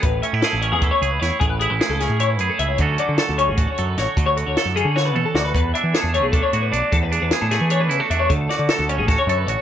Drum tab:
HH |xxxxxxx|xxxxxxx|xxxxxxx|xxxx---|
SD |--o---o|--oo---|--o---o|--o-o-o|
T2 |-------|-------|-------|-----o-|
BD |o---o--|o------|o---o--|o------|

HH |xxxxxxx|xxxxxxx|xxxxxxx|
SD |--o----|--oo---|-oo-o--|
T2 |-------|-------|-------|
BD |o---o--|o------|o---o--|